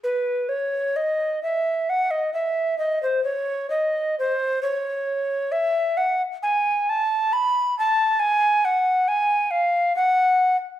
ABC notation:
X:1
M:3/4
L:1/16
Q:1/4=66
K:C#m
V:1 name="Recorder"
B2 c2 d2 e2 f d e2 | d ^B c2 d2 B2 c4 | e2 f2 g2 a2 b2 a2 | g2 f2 g2 ^e2 f3 z |]